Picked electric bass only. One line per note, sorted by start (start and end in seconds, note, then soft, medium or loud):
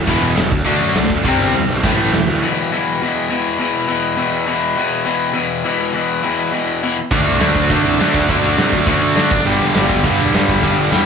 0.07 0.18 E1 loud
0.21 0.32 E1 medium
0.36 0.47 E1 loud
0.52 0.62 D2 medium
0.66 0.77 D2 loud
0.81 0.92 F#2 medium
0.95 1.06 C2 loud
1.10 1.21 D2 medium
1.24 1.35 C2 loud
1.37 1.49 G1 loud
1.53 1.64 E2 loud
1.68 1.79 B1 medium
1.83 1.94 A1 loud
1.98 2.08 A1 medium
2.11 2.22 E1 loud
2.26 2.37 D2 loud
7.11 7.25 D2 loud
7.26 7.40 C2 medium
7.41 7.54 D2 loud
7.55 7.69 D2 medium
7.70 7.83 D3 loud
7.84 7.98 C2 loud
7.98 8.12 D3 loud
8.14 8.28 D2 loud
8.29 8.42 D2 loud
8.43 8.57 D2 loud
8.58 8.72 C3 loud
8.72 8.86 D2 medium
8.86 9.00 D2 loud
9.02 9.15 D2 loud
9.15 9.30 D3 loud
9.31 9.44 G1 medium
9.45 9.59 G1 loud
9.60 9.74 E1 loud
9.75 9.88 G1 loud
9.89 10.03 G1 medium
10.04 10.18 G2 loud
10.19 10.33 E1 medium
10.34 10.48 G2 loud
10.48 10.62 G1 loud
10.63 10.77 G1 loud
10.78 10.91 G1 loud
10.92 11.06 E2 loud